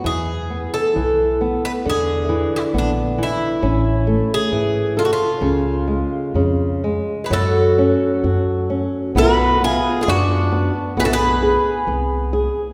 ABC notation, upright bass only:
X:1
M:2/4
L:1/8
Q:1/4=66
K:C#phr
V:1 name="Upright bass" clef=bass
E,,2 B,,,2 | E,,2 _B,,,2 | A,,,2 G,,2 | C,,2 ^E,,2 |
[K:F#m] F,,2 F,,2 | B,,,2 F,,2 | B,,,2 ^B,,,2 |]